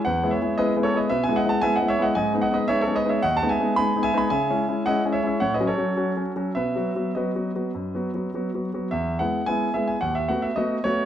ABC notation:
X:1
M:4/4
L:1/16
Q:1/4=110
K:E
V:1 name="Grand piano"
[Bf]2 [ce]2 [Bd]2 [Ac] [Bd] [Be] [eg] [df] [fa] [eg] [df] [ce] [df] | [dg]2 [df] [Bd] [ce] [Ac] [Bd] [ce] [df] [fa] [eg]2 [gb]2 [eg] [gb] | [eg]4 [df]2 [ce] [ce] [cf] [Bd] [Ac]6 | [Be]4 [Bd]8- [Bd]2 z2 |
e2 f2 g2 e g f e f e d2 c2 |]
V:2 name="Grand piano"
(3E,,2 [G,B,E]2 [G,B,E]2 (3[G,B,E]2 [G,B,E]2 [G,B,E]2 (3B,,2 [G,B,E]2 [G,B,E]2 (3[G,B,E]2 [G,B,E]2 [G,B,E]2 | (3G,,2 [G,B,D]2 [G,B,D]2 (3[G,B,D]2 [G,B,D]2 [G,B,D]2 (3D,,2 [G,B,D]2 [G,B,D]2 (3[G,B,D]2 [G,B,D]2 [G,B,D]2 | (3C,2 [G,CE]2 [G,CE]2 (3[G,CE]2 [G,CE]2 [G,CE]2 (3A,,2 [F,CF]2 [F,CF]2 (3[F,CF]2 [F,CF]2 [F,CF]2 | (3B,,2 [F,B,F]2 [F,B,F]2 (3[F,B,F]2 [F,B,F]2 [F,B,F]2 (3F,,2 [F,B,F]2 [F,B,F]2 (3[F,B,F]2 [F,B,F]2 [F,B,F]2 |
E,,2 [G,B,E]2 [G,B,E]2 [G,B,E]2 D,,2 [A,B,F]2 [A,B,F]2 [A,B,F]2 |]